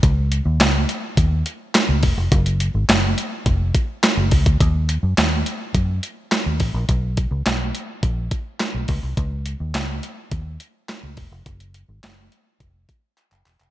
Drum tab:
HH |x-x-x-x-x-x-x-o-|xxx-x-x-x-x-x-ox|x-x-x-x-x-x-x-o-|x-x-x-x-x-x-x-o-|
CP |----x-------x---|----x-------x---|----x-------x---|----x-------x---|
SD |----o-------o---|----o-------o---|----o-------o---|----o-------o---|
BD |o-------o-----o-|o-------o-o---oo|o-------o-----o-|o-o-----o-o---o-|

HH |x-x-x-x-x-x-x-o-|xxx-x-x-x-x-x-ox|
CP |----x-------x---|----x-------xxxx|
SD |----o-------o---|----o-----------|
BD |o-------o-----o-|o-------o-o-----|